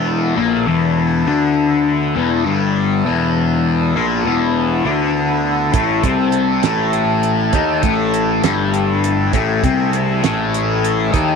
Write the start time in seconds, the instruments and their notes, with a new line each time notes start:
Already playing: picked electric bass E1, distorted electric guitar E2 E3, transistor combo organ B3 E4 A4
0.36 picked electric bass A#1, distorted electric guitar A#2 A#3
0.67 picked electric bass E1, distorted electric guitar E2 E3
1.26 picked electric bass D2, distorted electric guitar D3 D4
2.15 picked electric bass E1, distorted electric guitar E2 E3
2.45 picked electric bass G1, distorted electric guitar G2 G3
3.05 picked electric bass E1, distorted electric guitar E2 E3
3.95 picked electric bass A#1, distorted electric guitar A#2 A#3
4.25 picked electric bass E1, distorted electric guitar E2 E3
4.85 picked electric bass D2, distorted electric guitar D3 D4
5.73 picked electric bass A1, distorted electric guitar A2 A3, transistor combo organ A3, kick, closed hi-hat
6.03 picked electric bass C2, distorted electric guitar C3 C4, kick, closed hi-hat
6.32 closed hi-hat
6.63 picked electric bass A1, distorted electric guitar A2 A3, snare, closed hi-hat
6.93 closed hi-hat
7.23 closed hi-hat
7.53 picked electric bass D#2, distorted electric guitar D#3 D#4, kick, closed hi-hat
7.82 picked electric bass A1, distorted electric guitar A2 A3, kick, closed hi-hat
8.14 closed hi-hat
8.43 picked electric bass G1, distorted electric guitar G2 G3, snare, closed hi-hat
8.74 closed hi-hat
9.04 closed hi-hat
9.32 picked electric bass A1, distorted electric guitar A2 A3, transistor combo organ G#4, kick, closed hi-hat
9.64 picked electric bass C2, distorted electric guitar C3 C4, kick, closed hi-hat
9.93 closed hi-hat
10.24 picked electric bass A1, distorted electric guitar A2 A3, snare, closed hi-hat
10.54 closed hi-hat
10.84 closed hi-hat
11.13 picked electric bass D#2, distorted electric guitar D#3 D#4, kick, closed hi-hat